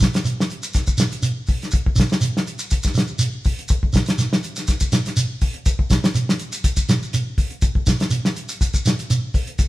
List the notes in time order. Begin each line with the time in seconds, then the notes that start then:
0.00 kick, snare, closed hi-hat, shekere
0.13 snare, closed hi-hat, shekere
0.25 closed hi-hat, shekere
0.40 snare
0.50 closed hi-hat, shekere
0.63 closed hi-hat, shekere
0.74 kick, snare, closed hi-hat, shekere
0.87 kick, shekere
0.98 snare, closed hi-hat, shekere
1.11 closed hi-hat, shekere
1.22 closed hi-hat, shekere
1.47 kick, open hi-hat, shekere
1.62 snare, closed hi-hat
1.71 kick, closed hi-hat, shekere
1.86 kick
1.96 kick, closed hi-hat, shekere
2.00 snare
2.09 snare, shekere
2.21 closed hi-hat, shekere
2.37 snare
2.47 closed hi-hat, shekere
2.59 closed hi-hat, shekere
2.71 kick, closed hi-hat, shekere
2.83 kick, snare, shekere
2.94 snare, closed hi-hat, shekere
3.07 shekere
3.19 closed hi-hat, shekere
3.44 kick, open hi-hat, shekere
3.59 closed hi-hat
3.68 kick, closed hi-hat, shekere
3.83 kick
3.93 kick, snare, closed hi-hat, shekere
4.06 snare, closed hi-hat, shekere
4.18 snare, closed hi-hat, shekere
4.33 snare
4.43 closed hi-hat, shekere
4.56 snare, closed hi-hat, shekere
4.67 kick, snare, closed hi-hat, shekere
4.80 kick, shekere
4.92 snare, closed hi-hat, shekere
5.05 snare, closed hi-hat, shekere
5.17 closed hi-hat, shekere
5.41 kick, open hi-hat, shekere
5.54 closed hi-hat
5.66 kick, closed hi-hat, shekere
5.79 kick
5.90 kick, snare, closed hi-hat, shekere
6.03 snare, shekere
6.15 closed hi-hat, shekere
6.29 snare
6.39 closed hi-hat, shekere
6.52 closed hi-hat, shekere
6.64 kick, closed hi-hat, shekere
6.77 kick, shekere
6.89 snare, closed hi-hat, shekere
7.03 shekere
7.13 closed hi-hat, shekere
7.38 kick, open hi-hat, shekere
7.50 closed hi-hat
7.62 kick, closed hi-hat, shekere
7.75 kick
7.87 kick, snare, closed hi-hat, shekere
8.00 snare, closed hi-hat, shekere
8.10 closed hi-hat, shekere
8.25 snare
8.36 closed hi-hat, shekere
8.49 closed hi-hat, shekere
8.61 kick, closed hi-hat, shekere
8.74 kick, shekere
8.86 snare, closed hi-hat, shekere
8.99 closed hi-hat, shekere
9.10 closed hi-hat, shekere
9.34 kick, open hi-hat, shekere
9.47 closed hi-hat
9.59 kick, closed hi-hat, shekere